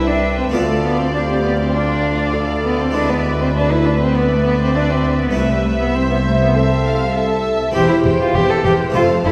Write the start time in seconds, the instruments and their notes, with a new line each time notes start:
Already playing: cello section C2, double bass section C2, harpsichord C2 C4 E4 G4, viola section B4, violin section E5 G5
0.07 cello D4
0.38 cello C4
0.49 harpsichord A3 D4 F4, cello B3
0.54 double bass section D2, cello section D2, harpsichord D2, viola section A4, violin section D5 F5
0.69 cello A3
0.82 cello B3
0.98 cello C4
1.13 cello D4, viola section G4, violin section F5
1.28 cello C4
1.43 cello B3
1.60 cello C4
1.74 cello D4, viola section F4, violin section D5 G5
2.05 violin section F5
2.34 viola section A4
2.65 cello B3
2.80 cello C4
2.91 harpsichord G#3 E4, cello D4
2.95 viola section B4, violin section E5
3.09 cello B3
3.40 cello C4
3.55 cello D4, violin section B4
3.71 cello E4
3.85 cello D4
4.00 cello C4
4.15 cello B3, viola section B4, violin section D5
4.31 cello A3
4.45 cello B3
4.61 cello C4
4.75 cello D4, viola section B4
4.90 cello C4
5.22 cello B3
5.31 harpsichord A3 E4, violin section E5
5.35 cello section C2, double bass section C2, harpsichord C2, cello A3
5.52 cello G3
5.65 cello A3
5.81 cello B3
5.95 cello C4, viola section C5
6.11 cello B3
6.24 cello A3
6.40 cello B3
6.54 cello C4, viola section A4, violin section E5
6.84 violin section F5
7.14 viola section A4, violin section E5 A5
7.71 double bass section E1, cello section E2, harpsichord E2 C4 E4, cello G4, viola section G4, violin section C5 G5
7.89 cello E4
8.04 double bass section E1, harpsichord E2, cello section E2, viola section G4, violin section C5 G5
8.20 cello F4
8.34 double bass section E1, harpsichord E2, cello section E2, viola section G4, cello G4, violin section C5 G5
8.50 cello A4
8.64 double bass section E1, cello section E2, harpsichord E2, cello G4, viola section G4, violin section C5 G5
8.90 harpsichord A3 C4
8.94 double bass section F1, cello section F2, harpsichord F2, cello F4, viola section A4, violin section C5 F5
9.24 double bass section F1, cello section F2, harpsichord F2, cello E4, viola section A4, violin section C5 F5